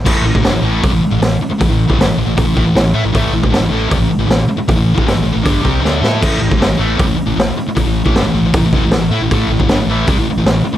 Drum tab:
CC |x---------------|----------------|----------------|----------------|
HH |----o---o---o---|o---o---o---o---|o---o---o---o---|o---o---o-------|
SD |----o-------o---|----o-------o---|----o-------o---|----o-------o-o-|
BD |o--o----o-------|o--o----o-o-----|o--o----o-------|o--o----o-o-----|

CC |x---------------|----------------|----------------|
HH |----o---o---o---|o---o---o---o---|o---o---o---o---|
SD |----o-------o---|----o-------o---|----o-------o---|
BD |o--o----o-------|o--o----o-o-----|o--o----o-------|